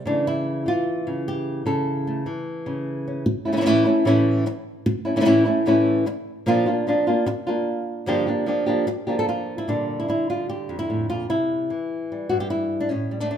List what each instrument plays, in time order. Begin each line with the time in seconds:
0.06 nylon-string guitar C#3 E3 A3 D4
0.27 nylon-string guitar E4
0.66 nylon-string guitar E3 F4
1.07 nylon-string guitar C#3
1.28 nylon-string guitar G4
1.66 nylon-string guitar C#3 A4
2.07 nylon-string guitar A3
2.26 nylon-string guitar E3
2.66 nylon-string guitar C#3
3.07 nylon-string guitar C#4
3.26 muted nylon-string guitar stroke
3.45 nylon-string guitar A3 C#4 E4
3.52 nylon-string guitar E3 A3 C#4 E4
3.56 nylon-string guitar E3 A3 C#4 E4
3.61 nylon-string guitar E3 A3 C#4 E4
3.66 nylon-string guitar A2 E3 A3 C#4 E4
3.85 nylon-string guitar A3 C#4 E4
4.05 nylon-string guitar A2 E3 A3 C#4 E4
4.46 muted nylon-string guitar stroke
4.86 muted nylon-string guitar stroke
5.05 nylon-string guitar A3 C#4 E4
5.16 nylon-string guitar E3 A3 C#4 E4
5.20 nylon-string guitar E3 A3 C#4 E4
5.25 nylon-string guitar A2 E3 A3 C#4 E4
5.45 nylon-string guitar A3 C#4 E4
5.66 nylon-string guitar A2 E3 A3 C#4 E4
6.06 muted nylon-string guitar stroke
6.46 nylon-string guitar A#2 F3 A#3 D4 F4
6.66 nylon-string guitar A#3 D4 F4
6.87 nylon-string guitar F3 A#3 D4 F4
7.07 nylon-string guitar A#3 D4 F4
7.26 muted nylon-string guitar stroke
7.47 nylon-string guitar A#3 D4 F4
8.06 nylon-string guitar G2 D3 F3 A#3 D4 G4
8.27 nylon-string guitar F3 A#3 D4 G4
8.46 nylon-string guitar F3 A#3 D4 G4
8.66 nylon-string guitar F3 A#3 D4 G4
8.87 muted nylon-string guitar stroke
9.07 nylon-string guitar F3 A#3 D4 G4
9.19 nylon-string guitar A4
9.29 nylon-string guitar F4
9.58 nylon-string guitar E4
9.68 nylon-string guitar A#2 D3 G3 D4
10.00 nylon-string guitar E4
10.08 nylon-string guitar D3 E4
10.30 nylon-string guitar F4
10.49 nylon-string guitar G4
10.69 nylon-string guitar F2
10.79 nylon-string guitar E4
10.90 nylon-string guitar A2
11.10 nylon-string guitar A#2 F4
11.30 nylon-string guitar C3 E4
11.70 nylon-string guitar E3
12.12 nylon-string guitar G3
12.29 nylon-string guitar G2 F#4
12.40 nylon-string guitar G4
12.50 nylon-string guitar E4
12.80 nylon-string guitar D4
12.89 nylon-string guitar A2 C#4
13.11 nylon-string guitar G3
13.20 nylon-string guitar A3 D4
13.31 nylon-string guitar D4